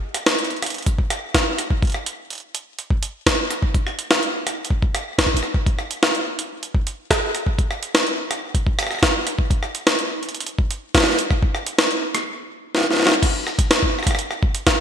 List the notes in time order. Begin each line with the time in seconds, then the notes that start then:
0.14 cross-stick, closed hi-hat
0.26 snare
0.38 closed hi-hat
0.44 closed hi-hat
0.50 closed hi-hat
0.57 closed hi-hat
0.62 cross-stick, closed hi-hat
0.66 closed hi-hat
0.70 closed hi-hat
0.74 closed hi-hat
0.78 closed hi-hat
0.82 closed hi-hat
0.86 kick, closed hi-hat
0.99 kick
1.10 cross-stick, closed hi-hat
1.35 kick, snare, closed hi-hat
1.59 cross-stick, closed hi-hat
1.70 kick
1.82 kick, closed hi-hat
1.85 closed hi-hat
1.87 closed hi-hat
1.90 closed hi-hat
1.92 cross-stick, closed hi-hat
2.06 closed hi-hat
2.30 closed hi-hat
2.33 closed hi-hat
2.35 closed hi-hat
2.38 closed hi-hat
2.40 closed hi-hat
2.55 closed hi-hat
2.79 closed hi-hat
2.90 kick
3.03 closed hi-hat
3.26 kick, snare, closed hi-hat
3.51 cross-stick, closed hi-hat
3.62 kick
3.75 kick, closed hi-hat
3.87 cross-stick
3.99 closed hi-hat
4.11 snare
4.23 closed hi-hat
4.47 cross-stick, closed hi-hat
4.65 closed hi-hat
4.70 kick
4.82 kick
4.95 cross-stick, closed hi-hat
5.18 kick, snare, closed hi-hat
5.26 kick
5.34 kick, closed hi-hat
5.43 cross-stick
5.54 kick
5.66 kick, closed hi-hat
5.79 cross-stick
5.91 closed hi-hat
6.03 snare
6.15 closed hi-hat
6.39 closed hi-hat
6.63 closed hi-hat
6.75 kick
6.87 closed hi-hat
7.11 kick, snare, closed hi-hat
7.35 cross-stick, closed hi-hat
7.47 kick
7.59 kick, closed hi-hat
7.71 cross-stick
7.83 closed hi-hat
7.95 snare
8.07 closed hi-hat
8.31 cross-stick, closed hi-hat
8.55 kick, closed hi-hat
8.67 kick
8.79 cross-stick, closed hi-hat
8.83 cross-stick
8.87 cross-stick
8.91 cross-stick
8.95 cross-stick
8.99 kick, cross-stick
9.03 snare, closed hi-hat
9.27 cross-stick, closed hi-hat
9.39 kick
9.51 kick, closed hi-hat
9.63 cross-stick
9.75 closed hi-hat
9.87 snare
9.99 closed hi-hat
10.23 closed hi-hat
10.29 closed hi-hat
10.35 closed hi-hat
10.40 closed hi-hat
10.46 closed hi-hat
10.59 kick
10.71 closed hi-hat
10.95 kick, snare, closed hi-hat
10.98 snare
11.01 snare
11.04 snare
11.07 snare
11.10 snare
11.13 snare
11.16 snare, closed hi-hat
11.31 kick, cross-stick
11.43 kick
11.55 cross-stick
11.67 closed hi-hat
11.79 snare
11.91 closed hi-hat
12.15 cross-stick, closed hi-hat
12.75 snare
12.78 snare
12.81 snare
12.84 snare
12.91 snare
12.94 snare
12.97 snare
13.00 snare
13.03 snare
13.06 snare
13.09 snare
13.12 snare
13.23 kick, closed hi-hat, crash
13.47 cross-stick
13.59 kick, closed hi-hat
13.71 snare, closed hi-hat
13.83 kick
13.99 cross-stick
14.03 kick, cross-stick
14.07 cross-stick, closed hi-hat
14.11 cross-stick
14.15 cross-stick, closed hi-hat
14.31 cross-stick
14.43 kick
14.55 closed hi-hat
14.67 kick, snare, closed hi-hat